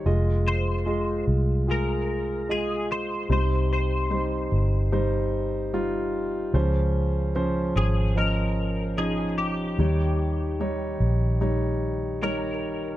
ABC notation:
X:1
M:4/4
L:1/8
Q:1/4=74
K:Fm
V:1 name="Clean electric guitar"
z c2 z B2 A c | c c4 z3 | z3 A B2 A G- | G6 B2 |]
V:2 name="Grand piano"
[A,Fe]2 [A,Fe]2 [A,FA]2 [A,Fe]2 | [G,Ec]2 [G,Ec]2 [G,Ec]2 [G,EF]2 | [F,Dc]2 [F,Dc]2 [F,De]2 [F,DE]2 | [G,Ed]2 [G,Ed]2 [G,Ed]2 [G,Ed]2 |]
V:3 name="Grand piano" clef=bass
z8 | C,3 z4 z | D,3 z4 z | E,3 z4 z |]
V:4 name="Fingered electric bass" clef=bass
F,,,3 C,,4- C,, | C,,3 G,,,4- G,,, | D,,3 A,,,4- A,,, | E,,3 B,,,4- B,,, |]